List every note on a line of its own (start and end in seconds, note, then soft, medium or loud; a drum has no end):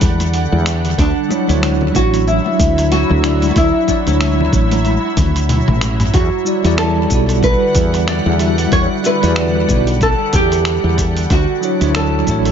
0.00 0.45 E2 medium
0.00 0.94 D3 medium
0.00 0.94 G3 medium
0.00 0.94 F#5 medium
0.00 kick medium
0.00 open hi-hat medium
0.00 high conga medium
0.00 shaker medium
0.20 open hi-hat soft
0.20 muted conga medium
0.20 shaker soft
0.34 open hi-hat medium
0.34 shaker soft
0.52 0.93 E2 medium
0.52 high conga medium
0.66 finger snap medium
0.66 open hi-hat medium
0.66 muted conga soft
0.66 shaker medium
0.85 open hi-hat soft
0.85 shaker soft
0.97 1.12 D2 medium
0.97 6.10 F#3 medium
0.97 1.98 D4 medium
0.97 6.10 E4 medium
0.97 kick loud
0.97 open hi-hat medium
0.97 shaker soft
1.28 1.45 F#3 medium
1.28 1.46 D4 medium
1.28 1.46 E4 medium
1.28 1.47 C#5 medium
1.28 muted conga medium
1.28 shaker medium
1.47 1.90 D2 medium
1.47 1.90 F#3 medium
1.47 1.91 D4 medium
1.47 1.92 E4 medium
1.47 1.92 C#5 loud
1.47 open hi-hat soft
1.47 shaker soft
1.62 finger snap medium
1.62 open hi-hat medium
1.62 high conga medium
1.62 shaker soft
1.81 muted conga soft
1.81 low conga medium
1.92 2.39 A1 medium
1.92 3.19 F#3 medium
1.92 3.20 D4 medium
1.92 kick loud
1.92 open hi-hat soft
1.92 shaker medium
1.96 3.21 E4 medium
1.96 2.25 F#4 loud
1.96 3.22 C#5 medium
2.14 open hi-hat soft
2.14 shaker soft
2.27 2.88 E4 medium
2.27 shaker soft
2.46 muted conga medium
2.59 3.03 D2 medium
2.59 kick loud
2.59 open hi-hat medium
2.59 high conga medium
2.59 shaker medium
2.78 open hi-hat soft
2.78 shaker soft
2.92 3.50 F#4 loud
2.92 open hi-hat medium
2.92 muted conga medium
2.92 shaker soft
3.10 3.51 D2 medium
3.10 low conga medium
3.22 3.84 F#3 medium
3.22 3.85 D4 medium
3.22 3.85 E4 medium
3.22 3.86 D5 medium
3.22 finger snap medium
3.22 open hi-hat medium
3.22 shaker medium
3.42 open hi-hat soft
3.42 high conga medium
3.42 shaker soft
3.51 3.56 F#4 medium
3.56 3.70 D2 medium
3.56 5.46 E4 medium
3.56 kick loud
3.56 open hi-hat medium
3.56 muted conga medium
3.56 shaker soft
3.87 4.02 F#3 medium
3.87 4.02 D4 medium
3.87 4.03 E4 medium
3.87 4.03 D5 loud
3.87 kick medium
3.87 open hi-hat soft
3.87 shaker medium
4.06 4.48 D2 medium
4.06 4.49 F#3 medium
4.06 4.50 D4 medium
4.06 4.50 E4 medium
4.06 4.51 C#5 loud
4.06 open hi-hat soft
4.06 muted conga medium
4.06 shaker soft
4.21 finger snap medium
4.21 open hi-hat medium
4.21 high conga medium
4.21 shaker soft
4.40 low conga medium
4.51 4.97 A1 medium
4.51 4.77 F#3 medium
4.51 4.77 D4 medium
4.51 4.78 E4 medium
4.51 4.79 C#5 medium
4.51 kick loud
4.51 open hi-hat soft
4.51 shaker medium
4.71 open hi-hat soft
4.71 muted conga medium
4.71 shaker soft
4.85 open hi-hat soft
4.85 high conga medium
4.85 shaker soft
5.17 5.61 D2 medium
5.17 kick loud
5.17 open hi-hat medium
5.17 high tom medium
5.17 muted conga soft
5.17 high conga medium
5.17 shaker medium
5.36 open hi-hat soft
5.36 shaker soft
5.49 open hi-hat medium
5.49 mid tom medium
5.49 shaker soft
5.68 6.09 A1 medium
5.68 mid tom medium
5.68 high conga medium
5.81 finger snap medium
5.81 open hi-hat medium
5.81 muted conga medium
5.81 shaker medium
6.00 mid tom medium
6.00 open hi-hat soft
6.00 shaker soft
6.14 6.28 E2 medium
6.14 11.26 D3 medium
6.14 11.26 G3 medium
6.14 6.78 F#4 medium
6.14 11.26 F#5 medium
6.14 kick loud
6.14 open hi-hat medium
6.14 shaker soft
6.45 6.61 G3 medium
6.45 6.62 E4 medium
6.45 6.62 F#4 medium
6.45 6.63 D5 medium
6.45 shaker medium
6.64 7.05 E2 medium
6.64 7.06 G3 medium
6.64 7.07 E4 medium
6.64 7.08 F#4 medium
6.64 7.09 D5 medium
6.64 open hi-hat soft
6.64 shaker soft
6.78 7.43 A4 medium
6.78 finger snap loud
6.78 open hi-hat medium
6.78 shaker soft
7.08 7.54 B1 medium
7.08 8.35 G3 medium
7.08 8.36 E4 medium
7.08 kick medium
7.08 open hi-hat soft
7.08 shaker medium
7.12 8.37 F#4 medium
7.12 8.38 D5 medium
7.29 open hi-hat soft
7.29 shaker soft
7.43 8.08 B4 loud
7.43 kick loud
7.43 shaker soft
7.75 8.19 E2 medium
7.75 kick loud
7.75 open hi-hat medium
7.75 shaker medium
7.94 open hi-hat soft
7.94 shaker soft
8.08 8.72 D5 loud
8.08 finger snap loud
8.08 open hi-hat medium
8.08 shaker soft
8.26 8.67 E2 medium
8.38 9.00 G3 medium
8.38 9.01 E4 medium
8.38 9.01 F#4 medium
8.38 9.02 E5 medium
8.38 open hi-hat medium
8.38 shaker medium
8.58 open hi-hat soft
8.58 shaker soft
8.72 8.86 E2 medium
8.72 8.81 C#5 loud
8.72 kick loud
8.72 open hi-hat medium
8.72 shaker soft
9.02 9.18 G3 medium
9.02 9.18 E4 medium
9.02 9.19 F#4 medium
9.02 9.66 B4 medium
9.02 9.19 E5 loud
9.02 open hi-hat soft
9.02 shaker medium
9.22 9.64 E2 medium
9.22 9.65 G3 medium
9.22 9.65 E4 medium
9.22 9.66 F#4 medium
9.22 9.67 D5 loud
9.22 open hi-hat soft
9.22 shaker soft
9.36 finger snap loud
9.36 open hi-hat medium
9.36 shaker soft
9.67 10.13 B1 medium
9.67 9.93 G3 medium
9.67 9.93 E4 medium
9.67 9.94 F#4 medium
9.67 9.94 D5 medium
9.67 kick medium
9.67 open hi-hat soft
9.67 shaker medium
9.87 open hi-hat soft
9.87 shaker soft
10.01 10.35 A4 loud
10.01 kick loud
10.01 open hi-hat soft
10.01 shaker soft
10.33 10.77 E2 medium
10.33 10.95 G4 loud
10.33 kick loud
10.33 open hi-hat medium
10.33 shaker medium
10.52 open hi-hat soft
10.52 shaker soft
10.65 finger snap loud
10.65 open hi-hat medium
10.65 shaker soft
10.84 11.25 E2 medium
10.98 kick medium
10.98 open hi-hat medium
10.98 shaker medium
11.17 open hi-hat soft
11.17 shaker soft
11.30 11.44 D2 loud
11.30 12.52 F#3 medium
11.30 12.52 E4 medium
11.30 11.96 F#4 medium
11.30 kick loud
11.30 open hi-hat medium
11.30 shaker soft
11.61 11.78 F#3 medium
11.61 11.78 D4 medium
11.61 11.79 E4 medium
11.61 11.79 C#5 medium
11.61 shaker medium
11.80 12.22 D2 medium
11.80 12.23 F#3 medium
11.80 12.24 D4 medium
11.80 12.24 E4 medium
11.80 12.25 C#5 medium
11.80 open hi-hat soft
11.80 shaker soft
11.95 12.52 A4 medium
11.95 finger snap loud
11.95 open hi-hat medium
11.95 shaker soft
12.24 12.52 A1 medium
12.24 12.52 F#3 medium
12.24 12.52 D4 medium
12.24 kick medium
12.24 open hi-hat soft
12.24 shaker medium
12.29 12.52 E4 medium
12.29 12.52 C#5 loud
12.45 open hi-hat soft
12.45 shaker soft